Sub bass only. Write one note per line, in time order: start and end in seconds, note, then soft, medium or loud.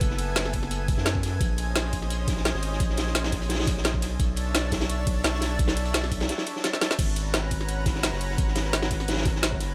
0.01 0.97 F#1 loud
0.98 1.39 F#2 medium
1.41 2.53 A#1 loud
2.55 2.79 G#1 loud
2.80 4.04 A#1 loud
4.02 4.18 B1 medium
4.20 5.23 B1 loud
5.24 5.58 B1 loud
5.59 6.29 B1 loud
6.99 8.11 G#1 loud
8.13 8.37 F#1 loud
8.38 9.62 G#1 loud
9.60 9.75 F#1 medium